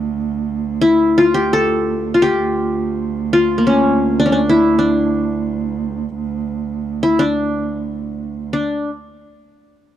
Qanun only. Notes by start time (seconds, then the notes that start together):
Already playing: F4
0.81 E4
1.18 F4
1.34 G4
1.53 A4
2.14 F4
2.22 G4
3.33 F4
3.58 A#3
3.67 C#4
4.20 D4
4.26 C#4
4.32 D4
4.49 E4
4.79 D4
7.03 E4
7.19 D4
8.53 D4